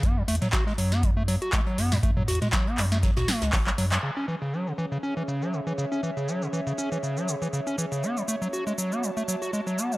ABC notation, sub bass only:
X:1
M:4/4
L:1/16
Q:"Swing 16ths" 1/4=120
K:C#m
V:1 name="Sub bass" clef=bass
F,,2 E,, z3 F,,4- F,, z3 F,,2 | F,,2 E,, z3 F,,3 C,, z C,, F,,,2 F,,2 | z16 | z16 |
z16 |]